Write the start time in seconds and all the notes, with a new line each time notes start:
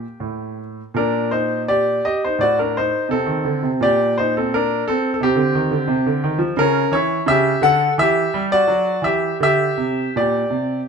Already playing: A#3 G4
0.20 A2
0.94 A#2 D4 A#4
1.31 D#4 C5
1.68 G4 D5
2.05 G4 D#5
2.24 D#4 C5
2.39 A2 F#4 D5
2.59 D4 A#4
2.77 D#4 C5
3.09 C3 C4 A4
3.26 D#3
3.45 D3
3.63 C3
3.81 A#2 G4 D5
4.18 D#4 C5
4.37 C4 A4
4.54 D4 A#4
4.88 C4 A4
5.14 A4
5.20 C3 C4 G4
5.36 D3
5.55 D#3
5.71 D3
5.88 C3
6.06 D3
6.24 D#3
6.38 F3
6.57 C#3 C#4 A#4
6.92 E3 E4 C#5
7.26 C#3 G4 E5
7.61 D3 A4 F#5
7.98 E3 G4 E5
8.34 G3
8.52 F#4 D5
8.68 F#3
9.02 E3 G4 E5
9.40 D3 G4 E5
9.78 C3
10.16 A#2 G4 D5
10.50 C3